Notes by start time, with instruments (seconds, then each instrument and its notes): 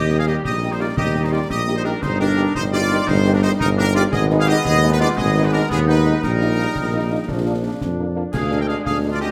Already playing: tuba D#2, trombone section G3 D#4, woodwind section G4, trumpet section D#5
0.10 french horn section A#3 D#4 G4, snare
0.18 woodwind section G#4, trumpet section F5
0.27 french horn section A#3 D#4 G4, woodwind section G4, trumpet section D#5, snare
0.44 tuba A#1, woodwind section G4, trumpet section D#5, concert bass drum, snare
0.62 french horn section A#3 D#4 G4
0.70 woodwind section D#4, trumpet section C5
0.79 french horn section A#3 D#4 G4, woodwind section F4, trumpet section D5
0.97 tuba D#2, woodwind section G4, trumpet section D#5, concert bass drum, snare
1.14 french horn section A#3 D#4 G4
1.24 woodwind section D#4, trumpet section C5
1.32 french horn section A#3 D#4 G4, woodwind section F4, trumpet section D5
1.50 tuba A#1, woodwind section G4, trumpet section D#5, concert bass drum, snare
1.67 french horn section A#3 D#4 G4, snare
1.76 woodwind section D#4, trumpet section C5
1.84 french horn section A#3 D#4 G4, woodwind section D4, trumpet section A#4, snare
2.02 tuba G1, trombone section G3 D#4, woodwind section D#4, trumpet section C5, concert bass drum, snare, crash
2.20 french horn section A#3 D#4 G4, woodwind section D4, trumpet section A#4, snare
2.37 french horn section A#3 D#4 G4, snare
2.54 tuba G1, woodwind section D#4, trumpet section C5, concert bass drum, snare
2.73 french horn section A#3 D#4 G4, woodwind section F4, trumpet section D5
2.90 french horn section A#3 D#4 G4
3.07 tuba G1, woodwind section D#4, trumpet section C5, concert bass drum, snare
3.25 french horn section A#3 D#4 G4
3.33 woodwind section D4, trumpet section A#4
3.42 french horn section A#3 D#4 G4, woodwind section D#4, trumpet section C5
3.59 tuba G1, woodwind section D#4, trumpet section A#4, concert bass drum, snare
3.77 french horn section A#3 D#4 G4, woodwind section D4, trumpet section A#4, snare
3.94 french horn section A#3 D#4 G4, woodwind section F4, trumpet section D5, snare
4.11 tuba G#1, trombone section G#3 B3, woodwind section G#4, trumpet section D#5, concert bass drum, snare, crash
4.30 french horn section G#3 B3 D#4, snare
4.39 woodwind section G#4, trumpet section F5
4.46 french horn section G#3 B3 D#4, woodwind section G4, trumpet section D#5, snare
4.64 tuba D#2, woodwind section G#4, trumpet section D#5, concert bass drum, snare
4.83 french horn section G#3 B3 D#4
4.90 woodwind section D#4, trumpet section B4
4.99 french horn section G#3 B3 D#4, woodwind section F4, trumpet section D5
5.17 tuba G#1, woodwind section G#4, trumpet section D#5, concert bass drum, snare
5.35 french horn section G#3 B3 D#4
5.43 woodwind section D#4, trumpet section B4
5.51 french horn section G#3 B3 D#4, woodwind section D4, trumpet section A#4
5.69 tuba D#2, woodwind section B3, trumpet section G#4, concert bass drum, snare
5.87 french horn section G#3 B3 D#4, woodwind section D#4, trumpet section B4, snare
6.05 french horn section G#3 B3 D#4, snare
6.22 tuba A#1, trombone section G3 D#4, woodwind section D#4, trumpet section A#4, concert bass drum, snare, crash
6.41 french horn section G3 A#3 D#4, snare
6.58 french horn section G3 A#3 D#4, snare
6.75 tuba A#1, concert bass drum, snare
6.93 french horn section G3 A#3 D#4
7.11 french horn section G3 A#3 D#4
7.28 tuba A#1, trombone section F3 D4, concert bass drum, snare
7.46 french horn section F3 A#3 D4
7.63 french horn section F3 A#3 D4
7.81 tuba F2, concert bass drum, snare
7.98 french horn section F3 A#3 D4
8.15 french horn section F3 A#3 D4
8.33 tuba D2, trombone section G#3, woodwind section G#4, trumpet section F5, concert bass drum, snare, crash
8.51 french horn section D3 G#3 D4, snare
8.59 woodwind section A#4, trumpet section G5
8.68 french horn section D3 G#3 D4, woodwind section G#4, trumpet section F5, snare
8.85 tuba D2, woodwind section G#4, trumpet section F5, concert bass drum, snare
9.03 french horn section D3 G#3 D4
9.11 woodwind section F4, trumpet section D5
9.20 french horn section D3 G#3 D4, woodwind section G4, trumpet section D#5